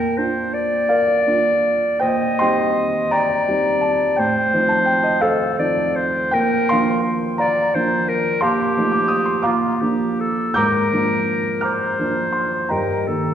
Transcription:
Already playing: grand piano A#2 G5, clarinet A#4
0.18 grand piano A#3 D4 F4, clarinet C5
0.54 clarinet D5
0.89 grand piano A#4 D5 F5
1.27 grand piano A#3 D4 F4
2.00 grand piano A#2 C5 D#5 G5, clarinet D#5
2.39 grand piano G3 C4 D#4 D#5 G5 C6
3.11 clarinet D5, grand piano D#5 G5 A#5
3.48 grand piano G3 C4 D#4
3.81 grand piano A5
4.16 grand piano A2 G5, clarinet C5
4.54 grand piano F3 C4 D#4
4.69 grand piano A5
4.86 grand piano G5
5.04 grand piano D#5
5.21 clarinet A4, grand piano A4 C5 F5
5.59 grand piano F3 C4 D#4, clarinet D5
5.96 clarinet C5
6.31 grand piano A#2 G5, clarinet A#4
6.69 grand piano F3 A#3 D4 F5 C6
7.38 grand piano D5 F5 A#5, clarinet D5
7.74 grand piano F3 A#3 D4, clarinet C5
8.09 clarinet A#4
8.41 grand piano A#2 F5 A5 C6, clarinet G4
8.77 grand piano F3 A3 D#4
8.92 grand piano D6
9.08 grand piano D#6
9.26 grand piano C6
9.42 grand piano A#2 F5 A#5 D6
9.46 clarinet F4
9.81 grand piano F3 A#3 D4, clarinet G4
10.20 clarinet A4
10.54 grand piano G#2 A#5 D6 G6, clarinet A#4
10.92 grand piano F3 A#3 D4
11.61 grand piano A#5 D6 F6
11.65 clarinet C5
11.99 grand piano F3 A#3 D4
12.33 grand piano C6
12.69 grand piano G2 D#5 G5 A#5, clarinet A#4
13.07 grand piano D#3 A#3 D#4, clarinet A4

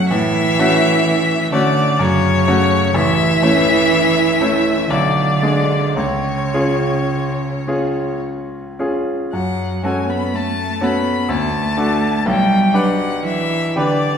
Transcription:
Already playing: cello F#3, grand piano A3 C#4 F#4
0.09 grand piano A2, cello E3, violin E5
0.59 grand piano A3 C#4 F#4
1.52 cello D3, grand piano A3 C#4 F#4, violin D5
1.99 grand piano F#2, cello C#3, violin C#5
2.48 grand piano A3 C#4 F#4
2.94 grand piano A1, cello E3, violin E5
3.42 grand piano A3 C#4 E4
4.40 grand piano A3 C#4 E4
4.90 grand piano B1, cello D3, violin D5
5.43 grand piano G#3 D4 G#4
5.96 grand piano C#2, cello C#3, violin C#5
6.54 grand piano C#4 F4 G#4
7.67 grand piano C#4 F4 G#4
8.79 grand piano C#4 F4 G#4
9.33 grand piano F#2, cello F#3, violin F#5
9.83 cello G#3, grand piano C#4 F#4 A4, violin G#5
10.08 cello B3, violin B5
10.33 cello A3, violin A5
10.81 cello B3, grand piano C#4 F#4 A4, violin B5
11.29 grand piano D2, cello A3, violin A5
11.77 grand piano D4 F#4 A4
12.26 grand piano B1, cello G3, violin G5
12.74 cello F#3, grand piano D4 G4 B4, violin F#5
13.23 cello E3, violin E5
13.76 cello D3, grand piano D4 G4 B4, violin D5

